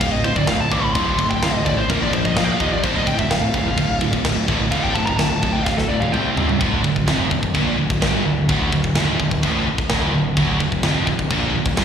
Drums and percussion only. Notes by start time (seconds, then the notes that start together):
0.01 kick, crash
0.24 kick, crash
0.36 kick
0.47 snare, crash
0.71 kick, crash
0.95 kick, crash
1.18 kick, crash
1.31 kick
1.43 snare, crash
1.66 kick, crash
1.90 kick, crash
2.13 kick, crash
2.25 kick
2.37 snare, crash
2.60 kick, crash
2.84 kick, crash
3.07 kick, crash
3.19 kick
3.31 snare, crash
3.54 kick, crash
3.78 kick, crash
4.01 kick, crash
4.13 kick
4.25 snare, crash
4.48 kick, crash
4.72 kick, crash
4.95 kick, crash
5.07 kick
5.19 snare, crash
5.43 kick, crash
5.66 kick, snare
5.78 snare
6.02 high tom
6.14 mid tom
6.37 floor tom
6.49 floor tom
6.61 kick, china
6.84 kick
6.96 kick
7.08 snare, china
7.31 kick
7.43 kick
7.55 kick, china
7.90 kick
8.02 snare, china
8.49 kick, china
8.72 kick
8.84 kick
8.95 snare, china
9.20 kick
9.31 kick
9.43 kick, china
9.78 kick
9.90 snare, china
10.37 kick, china
10.60 kick
10.72 kick
10.83 snare, china
11.07 kick
11.19 kick
11.30 kick, china
11.66 kick
11.77 snare, china